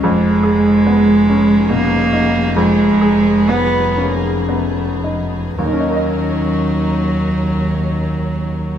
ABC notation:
X:1
M:3/4
L:1/8
Q:1/4=61
K:Ebm
V:1 name="String section"
[A,EA]6- | [A,EA]6 | [DEB]6 |]
V:2 name="Upright piano"
F,, A C D C, E | F,, A C D C E | [E,,E,DEBe]6 |]
V:3 name="Cello" clef=bass
A,4 B,2 | A,2 C z3 | G,6 |]
V:4 name="Double bass" clef=bass
F,,,6- | F,,,6 | E,,6 |]